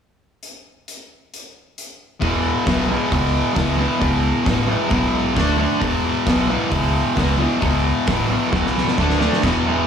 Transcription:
0.43 closed hi-hat soft
0.88 closed hi-hat medium
1.34 closed hi-hat medium
1.78 closed hi-hat medium
2.20 2.50 E1 medium
2.20 2.64 E2 medium
2.20 2.65 B2 medium
2.20 2.66 E3 loud
2.20 kick loud
2.20 open hi-hat soft
2.65 2.95 B1 medium
2.65 2.87 E2 medium
2.65 2.88 B2 medium
2.65 2.89 E3 medium
2.65 kick loud
2.65 snare loud
2.65 open hi-hat soft
2.88 3.10 E2 medium
2.88 3.11 B2 medium
2.88 3.12 E3 medium
3.11 3.40 C#2 medium
3.11 3.53 E2 medium
3.11 3.54 B2 medium
3.11 3.55 E3 medium
3.11 kick loud
3.11 open hi-hat soft
3.54 3.84 C#2 medium
3.54 3.75 E2 medium
3.54 3.76 B2 medium
3.54 3.77 E3 medium
3.54 kick loud
3.54 snare loud
3.54 open hi-hat medium
3.76 3.98 E2 medium
3.76 3.99 B2 medium
3.76 4.00 E3 medium
3.99 4.29 C#2 medium
3.99 4.43 E2 medium
3.99 4.43 B2 loud
3.99 4.44 E3 loud
3.99 kick loud
3.99 open hi-hat soft
4.44 4.75 A1 medium
4.44 4.65 E2 medium
4.44 4.65 B2 loud
4.44 4.67 E3 medium
4.44 kick loud
4.44 snare loud
4.44 open hi-hat soft
4.66 4.88 E2 medium
4.66 4.89 B2 medium
4.66 4.90 E3 medium
4.89 5.36 B1 medium
4.89 5.34 E2 medium
4.89 5.34 B2 medium
4.89 5.35 E3 loud
4.89 kick loud
4.89 open hi-hat soft
5.34 5.64 D2 medium
5.34 5.56 D3 medium
5.34 5.57 A3 medium
5.34 5.58 D4 medium
5.34 kick loud
5.34 snare loud
5.34 open hi-hat soft
5.57 5.80 D3 medium
5.57 5.80 A3 medium
5.57 5.81 D4 medium
5.80 6.10 E1 medium
5.80 6.26 E2 medium
5.80 6.26 B2 medium
5.80 6.27 E3 loud
5.80 kick medium
5.80 open hi-hat soft
6.27 6.55 B1 medium
6.27 6.47 E2 medium
6.27 6.48 B2 medium
6.27 6.49 E3 medium
6.27 kick loud
6.27 snare loud
6.27 open hi-hat soft
6.48 6.69 E2 medium
6.48 6.70 B2 medium
6.48 6.71 E3 medium
6.70 7.00 C#2 medium
6.70 7.15 E2 medium
6.70 7.15 B2 medium
6.70 7.17 E3 medium
6.70 kick loud
6.70 open hi-hat medium
7.16 7.44 C#2 medium
7.16 7.37 E2 medium
7.16 7.39 B2 medium
7.16 7.39 E3 medium
7.16 kick medium
7.16 snare loud
7.16 open hi-hat medium
7.39 7.59 E2 medium
7.39 7.60 B2 medium
7.39 7.61 E3 medium
7.60 7.90 C#2 medium
7.60 8.06 E2 medium
7.60 8.07 B2 medium
7.60 8.08 E3 loud
7.60 kick loud
7.60 open hi-hat soft
8.07 8.35 A1 medium
8.07 8.27 E2 medium
8.07 8.29 B2 medium
8.07 8.29 E3 medium
8.07 kick loud
8.07 snare loud
8.07 open hi-hat medium
8.28 8.49 E2 medium
8.28 8.50 B2 medium
8.28 8.51 E3 medium
8.50 8.81 B1 medium
8.50 8.96 E2 medium
8.50 8.96 B2 medium
8.50 8.96 E3 medium
8.50 kick loud
8.50 snare medium
8.66 snare medium
8.77 snare medium
8.88 snare medium
8.98 9.26 D2 medium
8.98 9.17 D3 medium
8.98 9.17 A3 medium
8.98 9.18 D4 medium
8.98 kick medium
8.98 snare medium
9.10 snare medium
9.19 9.41 D3 medium
9.19 9.41 A3 medium
9.19 9.41 D4 medium
9.19 snare medium
9.33 snare medium
9.42 9.86 E1 medium
9.42 9.87 E2 medium
9.42 9.68 B2 medium
9.42 9.66 E3 loud
9.42 kick loud
9.42 snare loud
9.42 crash medium
9.66 9.87 B2 medium
9.66 9.87 E3 medium

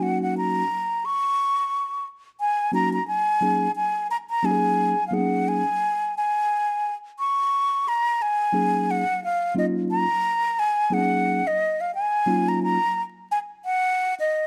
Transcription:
0.00 0.62 F#3 medium
0.00 0.62 A#3 medium
0.00 0.66 C#4 medium
0.00 0.63 D#4 medium
0.00 0.63 F#4 medium
0.00 0.21 F#5 medium
0.22 0.35 F#5 medium
0.38 1.07 A#5 loud
1.05 2.06 C#6 loud
2.41 2.71 G#5 loud
2.72 2.98 F#3 medium
2.72 2.98 A#3 medium
2.72 2.98 C#4 medium
2.72 2.98 D#4 medium
2.72 2.99 F#4 medium
2.72 2.92 A#5 loud
2.94 3.06 A#5 medium
3.08 3.71 G#5 loud
3.41 3.66 F#3 medium
3.41 3.67 A#3 medium
3.41 3.67 C#4 medium
3.41 3.67 D#4 medium
3.41 3.67 G#4 medium
3.76 4.07 G#5 loud
4.11 4.17 A#5 medium
4.30 4.47 A#5 medium
4.43 4.93 F#3 medium
4.43 4.93 A#3 medium
4.43 4.94 C#4 medium
4.43 4.94 D#4 medium
4.43 4.52 G4 medium
4.43 5.07 G#5 medium
4.51 4.97 G#4 medium
5.08 5.61 F#3 medium
5.08 5.61 A#3 medium
5.08 5.15 F5 medium
5.12 5.19 B3 medium
5.12 5.62 D#4 medium
5.12 5.62 G#4 medium
5.12 5.50 F#5 medium
5.19 5.65 C#4 medium
5.48 6.15 G#5 loud
6.17 6.94 G#5 medium
7.19 7.90 C#6 loud
7.88 8.23 A#5 loud
8.22 8.92 G#5 loud
8.53 9.02 F#3 medium
8.53 9.02 A#3 medium
8.53 9.03 C#4 medium
8.53 9.03 D#4 medium
8.53 9.03 G#4 medium
8.91 9.23 F#5 medium
9.24 9.54 F5 medium
9.54 10.04 F#3 medium
9.54 10.05 A#3 medium
9.54 10.05 C#4 medium
9.54 10.05 D#4 medium
9.54 10.05 F4 medium
9.54 9.66 D#5 medium
9.91 10.61 A#5 loud
10.59 10.95 G#5 loud
10.90 11.40 F#3 medium
10.90 11.41 A#3 medium
10.90 10.98 C4 soft
10.90 11.41 D#4 medium
10.90 11.41 G#4 medium
10.90 11.49 F#5 loud
10.98 11.44 C#4 medium
11.47 11.82 D#5 medium
11.81 11.94 F5 medium
11.95 12.50 G#5 loud
12.26 12.77 F#3 medium
12.26 12.77 A#3 medium
12.26 12.77 C#4 medium
12.26 12.77 D#4 medium
12.26 12.78 F4 medium
12.49 12.62 A#5 medium
12.63 13.02 A#5 loud
13.32 13.39 G#5 loud
13.65 14.14 F#5 loud
14.20 14.47 D#5 medium

